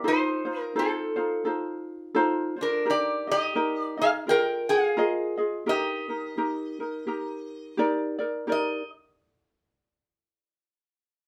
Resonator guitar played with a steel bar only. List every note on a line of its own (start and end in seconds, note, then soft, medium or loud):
0.08 0.73 D#4 medium
0.08 0.61 C5 medium
0.61 0.79 A#4 medium
0.79 1.43 C4 medium
0.79 1.43 A4 medium
2.61 2.86 D4 medium
2.61 2.90 A#4 medium
2.90 3.26 G4 medium
2.90 3.27 D5 medium
3.31 3.96 G4 medium
3.31 3.80 D#5 loud
3.80 4.01 D5 loud
4.02 4.10 G#4 medium
4.02 4.09 F5 medium
4.29 4.67 A#4 medium
4.29 4.69 G5 loud
4.69 5.35 G#4 medium
4.69 5.35 F5 medium
5.69 7.76 G4 medium
5.69 7.76 D#5 loud
8.52 8.89 D#5 medium